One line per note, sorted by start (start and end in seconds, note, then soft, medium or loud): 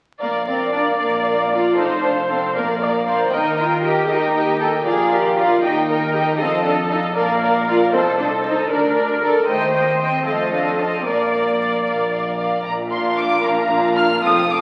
0.21 0.91 A#1 soft
0.21 0.29 A#3 soft
0.21 0.45 A#4 soft
0.21 0.46 D5 soft
0.21 1.74 D5 medium
0.21 0.47 F5 soft
0.46 0.73 C4 soft
0.46 0.72 A#4 soft
0.46 0.72 D5 soft
0.46 0.71 F5 soft
0.73 0.81 D4 soft
0.73 0.98 A#4 soft
0.73 0.98 D5 soft
0.73 0.99 F5 soft
0.99 1.69 A#1 soft
0.99 1.50 A#3 soft
0.99 1.24 A#4 soft
0.99 1.24 D5 soft
0.99 1.24 F5 soft
1.25 1.50 A#4 soft
1.25 1.50 D5 soft
1.25 1.51 F5 soft
1.51 1.77 F4 medium
1.51 1.77 A#4 soft
1.51 1.77 D5 soft
1.51 1.74 F5 soft
1.76 2.46 F1 soft
1.76 2.03 D#4 medium
1.76 2.01 A4 soft
1.76 2.02 C5 soft
1.76 2.54 C5 medium
1.76 2.00 F5 soft
2.01 2.11 D4 medium
2.01 2.26 A4 soft
2.01 2.27 C5 soft
2.01 2.27 F5 soft
2.28 2.54 C4 medium
2.28 2.54 A4 soft
2.28 2.54 C5 soft
2.28 2.53 F5 soft
2.54 3.23 A#1 medium
2.54 3.32 A#3 medium
2.54 2.64 A#4 medium
2.54 2.80 A#4 soft
2.54 2.80 D5 soft
2.54 2.78 F5 soft
2.80 3.06 A#4 soft
2.80 3.06 D5 soft
2.80 2.90 D5 soft
2.80 3.05 F5 soft
3.06 3.32 A#4 soft
3.06 3.32 C5 soft
3.06 3.32 D5 soft
3.06 3.32 F5 soft
3.32 4.00 D#2 medium
3.32 3.58 D#4 medium
3.32 4.09 A#4 medium
3.32 3.57 A#4 medium
3.32 3.57 D#5 medium
3.32 3.56 G5 soft
3.57 3.83 F4 medium
3.57 3.82 A#4 soft
3.57 3.82 D#5 soft
3.57 3.82 G5 soft
3.83 4.08 G4 medium
3.83 4.08 A#4 soft
3.83 4.07 D#5 soft
3.83 4.07 G5 soft
4.08 4.77 D#2 medium
4.08 4.60 D#4 medium
4.08 4.86 G4 medium
4.08 4.34 A#4 soft
4.08 4.34 D#5 soft
4.08 4.34 G5 soft
4.35 4.60 A#4 soft
4.35 4.60 D#5 soft
4.35 4.60 G5 soft
4.59 4.67 A4 medium
4.59 4.86 A#4 soft
4.59 4.86 D#5 soft
4.59 4.86 G5 soft
4.86 5.54 A#1 medium
4.86 5.61 F4 soft
4.86 5.11 G#4 medium
4.86 5.12 A#4 medium
4.86 5.11 D5 medium
4.86 5.10 F5 medium
5.11 5.37 G4 medium
5.11 5.37 A#4 soft
5.11 5.36 D5 soft
5.11 5.36 F5 soft
5.36 5.62 F4 medium
5.36 5.62 A#4 soft
5.36 5.62 D5 soft
5.36 5.62 F5 soft
5.62 6.31 D#2 medium
5.62 6.38 D#4 medium
5.62 5.71 G4 medium
5.62 5.87 A#4 medium
5.62 5.87 D#5 soft
5.62 5.86 G5 soft
5.88 6.12 A#4 soft
5.88 6.14 A#4 soft
5.88 6.12 D#5 soft
5.88 6.13 G5 soft
6.13 6.40 G4 soft
6.13 6.39 A#4 soft
6.13 6.37 D#5 soft
6.13 6.39 G5 soft
6.38 7.07 F2 medium
6.38 6.65 C4 medium
6.38 6.64 A4 medium
6.38 7.15 A4 medium
6.38 6.64 D#5 medium
6.38 6.63 F5 soft
6.64 6.73 D4 medium
6.64 6.89 A4 soft
6.64 6.90 D#5 soft
6.64 6.89 F5 soft
6.90 6.98 D#4 medium
6.90 7.16 A4 soft
6.90 7.16 D#5 soft
6.90 7.14 F5 soft
7.16 7.83 A#1 medium
7.16 7.66 A#3 medium
7.16 7.91 A#4 medium
7.16 7.41 A#4 medium
7.16 7.41 D5 medium
7.16 7.40 F5 soft
7.41 7.67 A#4 soft
7.41 7.67 D5 soft
7.41 7.65 F5 soft
7.66 7.75 F4 medium
7.66 7.93 A#4 soft
7.66 7.93 D5 soft
7.66 7.92 F5 soft
7.92 8.61 C2 medium
7.92 8.00 C4 medium
7.92 8.70 A4 medium
7.92 8.18 A4 medium
7.92 8.18 C5 medium
7.92 8.18 D#5 soft
8.18 8.26 D4 medium
8.18 8.44 A4 soft
8.18 8.45 C5 soft
8.18 8.44 D#5 soft
8.44 8.69 D#4 medium
8.44 8.70 A4 soft
8.44 8.70 C5 soft
8.44 8.70 D#5 soft
8.69 9.38 D2 medium
8.69 9.20 D4 medium
8.69 9.48 A#4 medium
8.69 8.95 A#4 soft
8.69 8.95 D5 soft
8.96 9.19 A#4 soft
8.96 9.21 D5 soft
9.20 9.47 A4 medium
9.20 9.46 A#4 soft
9.20 9.48 D5 soft
9.47 10.16 D#2 medium
9.47 9.73 A3 medium
9.47 10.24 C5 medium
9.47 9.73 C5 medium
9.47 9.73 D#5 medium
9.47 9.73 G5 soft
9.73 9.99 A#3 medium
9.73 9.98 C5 soft
9.73 9.99 D#5 soft
9.73 9.98 G5 soft
9.99 10.25 C4 medium
9.99 10.24 C5 soft
9.99 10.24 D#5 soft
9.99 10.25 G5 soft
10.25 10.96 F2 soft
10.25 10.52 A3 medium
10.25 11.03 A4 medium
10.25 10.51 C5 soft
10.25 10.51 D#5 soft
10.25 10.51 F5 soft
10.52 10.78 D4 medium
10.52 10.79 C5 soft
10.52 10.78 D#5 soft
10.52 10.77 F5 soft
10.78 11.05 C4 soft
10.78 11.05 C5 soft
10.78 11.05 D#5 soft
10.78 11.05 F5 soft
11.05 11.77 A#1 soft
11.05 11.85 A#3 medium
11.05 11.32 A#4 soft
11.05 12.23 D5 soft
11.05 11.32 D5 soft
11.05 11.30 F5 soft
11.31 11.58 A#4 soft
11.31 11.59 D5 soft
11.31 11.56 F5 soft
11.57 11.84 A#4 soft
11.57 11.84 D5 soft
11.57 11.84 F5 soft
11.85 12.57 A#1 medium
11.85 12.10 A#4 soft
11.85 12.11 D5 soft
11.85 12.10 F5 soft
12.11 12.37 A#4 soft
12.11 12.37 D5 soft
12.11 12.36 F5 soft
12.38 12.65 A#4 soft
12.38 12.65 D5 soft
12.38 12.64 F5 soft
12.65 13.35 A#1 medium
12.65 13.35 A#2 medium
12.65 12.73 A#5 medium
12.90 13.69 D4 soft
12.90 13.69 F4 soft
12.90 13.68 A#4 soft
12.90 13.69 F5 soft
12.90 13.17 C6 soft
13.18 13.44 D6 medium
13.44 14.14 A#1 medium
13.44 14.14 A#2 medium
13.44 13.98 A#5 medium
13.70 14.22 D4 soft
13.70 14.22 F4 soft
13.70 14.22 A#4 soft
13.70 14.22 F5 soft
13.96 14.23 F6 medium
14.23 14.61 F1 medium
14.23 14.61 F2 medium
14.23 14.48 C4 soft
14.23 14.49 F4 soft
14.23 14.47 A4 soft
14.23 14.47 F5 medium
14.23 14.49 D#6 medium
14.48 14.61 C4 soft
14.48 14.61 F4 soft
14.48 14.61 A4 soft
14.48 14.61 F5 soft
14.48 14.61 D6 medium